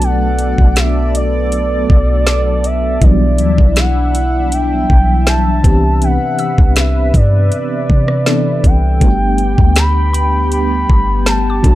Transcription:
Already playing: B1 F#3 A3 B3 D4 F#4 A4 D5
0.02 F#5, closed hi-hat
0.39 closed hi-hat
0.58 B1, kick
0.76 E5, snare, closed hi-hat
1.15 D5, closed hi-hat
1.52 closed hi-hat
1.90 B1, kick
2.27 D6, snare, closed hi-hat
2.64 E5, closed hi-hat
3.01 B1 E3 F#3 G3 B3 D4 E4 D5 E5, kick, closed hi-hat
3.38 D2, closed hi-hat
3.58 B1, kick
3.76 F#5, snare, closed hi-hat
4.15 closed hi-hat
4.52 G5, closed hi-hat
4.90 B1, kick
5.27 A5 G6, snare, closed hi-hat
5.63 C2 C3 E3 B3 C4 D4 G4 B4, kick, closed hi-hat
6.02 F#5, closed hi-hat
6.39 E6, closed hi-hat
6.58 C2, kick
6.76 E5, snare, closed hi-hat
7.14 G2 D5, kick, closed hi-hat
7.52 closed hi-hat
7.90 C3, kick
8.08 cross-stick
8.26 E3 B3 C4 D4 A4, snare, closed hi-hat
8.64 C2 G5, kick, closed hi-hat
9.00 G1 G3 A3 B3 D4 F#4 G4 G5, kick, closed hi-hat
9.10 G4
9.38 closed hi-hat
9.58 D2, kick
9.76 B5, snare, closed hi-hat
10.13 B5, closed hi-hat
10.52 B5, closed hi-hat
10.90 G1, kick
11.26 A5, snare, closed hi-hat
11.50 D6
11.63 B1 F#3 A3 B3 D4 F#4 A4 D5, kick, closed hi-hat

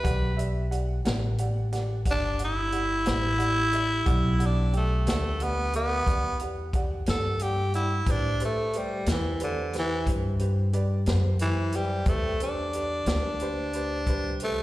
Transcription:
Already playing: B4
0.03 B1 G4 D5 F#5, kick, closed hi-hat
0.36 G4 D5 E5, closed hi-hat
0.71 G4 D5 F#5, closed hi-hat
1.05 A1 G4 D5 F#5, snare, closed hi-hat
1.38 G4 D5 F#5, closed hi-hat
1.72 G4 D5 F#5, snare, closed hi-hat
2.05 G1 G4 D5 F#5, kick, closed hi-hat
2.11 D4
2.39 G4 D5 F#5, closed hi-hat
2.44 E4
2.72 G4 D5 F#5, closed hi-hat
3.06 A1 G4 D5 F#5, snare, closed hi-hat
3.38 G4 D5 F#5, closed hi-hat
3.72 G4 D5 E5, closed hi-hat
4.05 B1 G4 D5 F#5, kick, closed hi-hat
4.39 G4 D5 F#5, closed hi-hat
4.46 D4
4.73 A3 G4 D5 G5, closed hi-hat
5.06 D2 A3 G4 D5 F#5, snare, closed hi-hat
5.40 B3 G4 D5 F#5, closed hi-hat
5.73 B3 G4 D5 E5, closed hi-hat
6.07 E2 G4 D5 F#5, kick, closed hi-hat
6.39 G4 D5 F#5, closed hi-hat
6.73 G4 D5 F#5, kick, closed hi-hat
7.06 G2 G4 A4 D5 F#5, snare, closed hi-hat
7.39 G4 D5 F#5, closed hi-hat
7.74 E4 G4 D5 F#5, closed hi-hat
8.06 A2 G4 B4 C5, kick, closed hi-hat
8.11 D4
8.40 G4 B4 C5, closed hi-hat
8.45 A3
8.73 G3 G4 B4 C5, closed hi-hat
9.06 E2 G4 B4 C5, snare, closed hi-hat
9.11 E3
9.40 D3 G4 B4 C5, closed hi-hat
9.73 G4 B4 C5, snare, closed hi-hat
9.79 E3
10.06 G2 G4 B4 C5, kick, closed hi-hat
10.39 G4 B4 C5, closed hi-hat
10.73 G4 B4 D5, closed hi-hat
11.06 F#2 G4 B4 C5, snare, closed hi-hat
11.39 E3 G4 B4 C5, closed hi-hat
11.72 G3 G4 B4 C5, closed hi-hat
12.06 E2 A3 G4 B4 C5, kick, closed hi-hat
12.40 D4 G4 B4 C5, closed hi-hat
12.73 G4 B4 D5, closed hi-hat
13.06 D2 G4 B4 D5, snare, closed hi-hat
13.40 G4 B4 C5, closed hi-hat
13.73 G4 B4 C5, closed hi-hat
14.06 C2 G4 B4 C5, kick, closed hi-hat
14.40 A3 G4 B4 C5, closed hi-hat

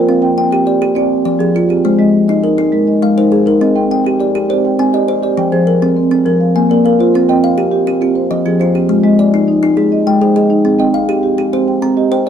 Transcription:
Already playing: F4 A#4 C5
0.08 C4 F5
0.22 C4 G5
0.38 G5
0.51 G4 G5
0.66 G4 D5
0.82 G4
0.95 C4 F4 D5
1.25 F3 D5
1.39 F3 G4 G#4
1.55 F4
1.69 C4 G4
1.84 G#3 C5
1.99 G#3 D#5
2.28 D#4 D#5
2.43 D#4 A#4
2.58 D#4
2.72 G#3 A#4
2.87 D#5
3.02 G#3 F5
3.17 D#4 A#4 C5
3.32 G#4
3.46 D#4 A#4
3.61 C4 D#5
3.75 C4 G5
3.91 G5
4.04 G4 G5
4.20 G4 D5
4.35 G4
4.49 C4 C5 D5
4.65 G5
4.79 C4 G#5
4.93 G4 D5 D#5
5.08 C5
5.23 G4 D5
5.37 F3 G5
5.52 F3 G#4 C5
5.67 A#4
5.82 C4
5.96 C4
6.11 C4
6.26 F3 A#4
6.40 F5
6.56 A#3 G#5
6.70 A#3 A#4 D5
6.85 A#4 F5
6.99 F4 C5
7.14 C4 A#4
7.29 C4 D#5 G5
7.44 F5
7.58 G4
7.71 G4
7.87 G4
8.01 C4 F4
8.15 C5
8.31 F3 D#5
8.45 F3 F4 G#4
8.60 F4 C5
8.75 C4 G4
8.89 G#3 F4
9.03 G#3 D#5
9.19 D5
9.34 D#4
9.48 D#4
9.63 D#4
9.77 G#3 G#4
9.92 D#5
10.07 G#3 G5
10.21 D#4 G#4 C5
10.36 G#4 D#5
10.50 D#4
10.65 C4 G#4
10.79 C4 D#5 G5
10.94 F5
11.09 G4
11.23 G4
11.38 G4
11.53 C4 C5
11.68 G5
11.82 C4 A#5
11.97 G4 D#5
12.11 C5 G5
12.26 G4

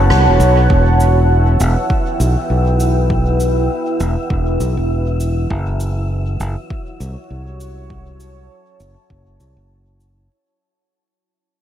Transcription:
Already playing: B3 F#4 B4 C#5 F#5 A5
0.10 C2, cross-stick
0.27 E1
0.40 B1, cabasa
0.69 E1 E4 E5, kick
0.81 B4
1.00 cabasa
1.08 G5
1.60 E1, cabasa
1.90 kick
2.20 B1, cabasa
2.50 B1
2.80 cabasa
3.10 kick
3.40 cabasa
4.00 E1, cabasa
4.30 E1, kick
4.60 B1, cabasa
4.77 E1
5.20 cabasa
5.50 F#1 F#4, kick
5.80 cabasa
6.01 C#5
6.40 F#1, cabasa
6.70 kick
7.00 C2, cabasa
7.30 C2
7.49 A5
7.61 cabasa
7.90 kick
8.20 cabasa
8.80 F#1, cabasa
9.10 F#1, kick
9.40 C2, cabasa
9.57 F#1
10.00 cabasa

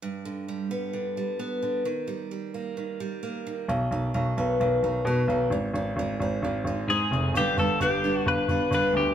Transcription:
0.02 G2
0.25 D3
0.48 G3
0.71 B3
0.93 D3
1.17 G3
1.39 B3
1.62 D3
1.85 D#3
2.07 G3
2.31 G3
2.54 A#3
2.77 D#3
3.00 G3
3.23 A#3
3.47 D#3
3.68 B1 B2
3.91 B1 D#3
4.14 B1 F#3
4.37 B1 B3
4.60 B1 D#3
4.82 B1 F#3
5.05 B2 B3
5.28 B1 D#3
5.50 G#1 G#2
5.73 G#1 D#3
5.96 G#1 G#3
6.20 G#1 C4
6.42 G#1 D#3
6.64 G#1 G#3
6.87 G#2 C4 G#4
7.11 F1 D#3
7.34 G1 G2 D3 G3 B3 D4 G4
7.57 G1 G3 B3 D4 A4
7.80 G1 G2 D3 G3 B3 D4 G4
8.04 G3 B3 D4
8.26 G1 B4
8.48 G1 G3 B3 D4
8.71 G1 D3 G3 B3 D4 B4
8.93 D2 G4

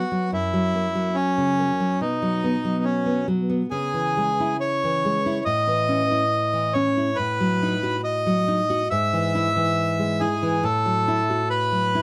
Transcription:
Already playing: B3 F#4
0.12 F#3
0.32 F#2 E4
0.53 F#3
0.74 A#3
0.95 F#3
1.15 C#4
1.38 C#3
1.59 A#3
1.80 F#3
2.01 B2 D#4
2.22 F#3
2.44 B3
2.65 F#3
2.84 C#4
3.06 B3
3.28 F#3
3.50 B3
3.71 C#3 G#4
3.94 E3
4.17 G#3
4.40 E4
4.60 C#5
4.84 E3
5.05 G#3
5.26 E4
5.45 A2 D#5
5.67 E3
5.88 C#4
6.11 E4
6.53 E3
6.73 C#4 C#5
6.97 E4
7.16 A2 B4
7.40 F#3
7.63 D#4
7.83 F#4
8.04 D#5
8.26 F#3
8.48 D#4
8.70 F#4
8.90 G#2 E5
9.13 E3
9.35 E4
9.56 E3
9.99 G#3
10.20 E4 G#4
10.43 E3
10.63 A2 A4
10.86 F#3
11.08 E4
11.30 F#4
11.50 B4
11.72 F#3
11.95 E4

